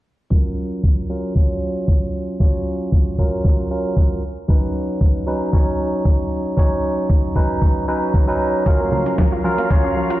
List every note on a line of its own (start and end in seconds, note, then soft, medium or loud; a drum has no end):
0.30 1.06 F#3 medium
0.30 1.07 C#4 medium
0.30 1.07 F4 medium
0.30 1.07 A#4 medium
0.30 kick loud
0.84 kick loud
1.09 1.33 F#3 medium
1.09 1.33 C#4 medium
1.09 1.33 F4 medium
1.09 1.33 A#4 medium
1.35 2.37 F#3 medium
1.35 2.37 C#4 medium
1.35 2.37 F4 medium
1.35 2.38 C#5 medium
1.35 kick loud
1.88 kick loud
2.40 3.15 F#3 medium
2.40 3.15 C#4 medium
2.40 3.16 F4 medium
2.40 3.16 C#5 medium
2.40 kick loud
2.92 kick loud
3.18 3.68 F#3 medium
3.18 3.68 C#4 medium
3.18 3.68 F4 medium
3.18 3.68 A#4 medium
3.18 kick medium
3.45 kick loud
3.70 4.21 F#3 medium
3.70 4.21 C#4 medium
3.70 4.21 F4 medium
3.70 4.22 A#4 medium
3.97 kick loud
4.48 5.24 F#3 medium
4.48 5.24 C#4 medium
4.48 5.24 D#4 medium
4.48 5.25 B4 medium
4.48 kick loud
5.01 kick loud
5.27 5.50 F#3 medium
5.27 5.50 C#4 medium
5.27 5.50 D#4 medium
5.27 5.51 B4 medium
5.53 6.54 F#3 medium
5.53 6.55 C#4 medium
5.53 6.55 D#4 medium
5.53 6.55 C#5 medium
5.53 kick loud
6.05 kick loud
6.57 7.32 F#3 medium
6.57 7.33 C#4 medium
6.57 7.33 D#4 medium
6.57 7.33 C#5 medium
6.57 kick loud
7.10 kick loud
7.35 7.85 F#3 medium
7.35 7.85 C#4 medium
7.35 7.85 D#4 medium
7.35 7.85 B4 medium
7.35 kick medium
7.62 kick loud
7.88 8.24 F#3 medium
7.88 8.25 C#4 medium
7.88 8.25 D#4 medium
7.88 8.25 B4 medium
8.14 kick loud
8.28 8.63 F#3 medium
8.28 8.63 C#4 medium
8.28 8.63 D#4 medium
8.28 8.64 B4 loud
8.66 8.71 F3 medium
8.66 9.41 F#3 medium
8.66 10.20 F#3 medium
8.66 9.42 C#4 medium
8.66 10.20 C#4 medium
8.66 9.42 F4 medium
8.66 10.20 A#4 medium
8.66 9.42 A#4 medium
8.66 10.20 F5 medium
8.66 kick loud
8.66 closed hi-hat soft
8.80 8.85 A#3 medium
8.92 9.01 F3 medium
8.92 high conga medium
9.06 9.14 C#4 medium
9.06 closed hi-hat medium
9.18 9.27 F3 medium
9.18 kick loud
9.18 snare loud
9.18 closed hi-hat soft
9.32 9.40 F4 medium
9.44 9.50 F3 medium
9.44 9.67 F#3 medium
9.44 9.68 C#4 medium
9.44 9.68 F4 medium
9.44 9.68 A#4 medium
9.58 9.70 A#3 medium
9.58 closed hi-hat medium
9.70 9.79 F3 medium
9.70 10.20 F#3 medium
9.70 10.20 C#4 medium
9.70 10.20 F4 medium
9.70 10.20 C#5 medium
9.70 kick loud
9.70 closed hi-hat soft
9.84 9.89 C#4 medium
9.96 10.05 F3 medium
10.10 10.18 F4 medium
10.10 closed hi-hat medium